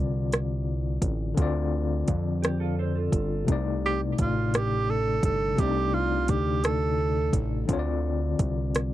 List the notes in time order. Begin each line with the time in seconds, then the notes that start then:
Already playing: D3 C4 F4 D5
0.00 C2
0.32 cross-stick, closed hi-hat
1.02 A1, kick, closed hi-hat
1.35 D2 D3 C4, kick, closed hi-hat
1.39 F4 D5
2.08 F2, kick, closed hi-hat
2.42 G4, cross-stick, closed hi-hat
2.60 F4 A4
2.79 A4 C5
2.95 F4 A4
3.12 G1, kick, closed hi-hat
3.45 C3 A3, kick, closed hi-hat
3.49 C2 D#4 D5
3.86 G4
4.18 A1 F4, kick, closed hi-hat
4.54 G4, cross-stick, closed hi-hat
4.90 A4
5.23 G1 A4, kick, closed hi-hat
5.55 C2 C3 A3, kick, closed hi-hat
5.60 D4 G4 D5
5.67 D#4
5.94 F4
6.28 D2 G4, kick, closed hi-hat
6.64 A4, cross-stick, closed hi-hat
7.33 A1, kick, closed hi-hat
7.65 D3 C4, kick, closed hi-hat
7.70 D2 F4 C#5
7.79 D5
8.39 C2, kick, closed hi-hat
8.75 cross-stick, closed hi-hat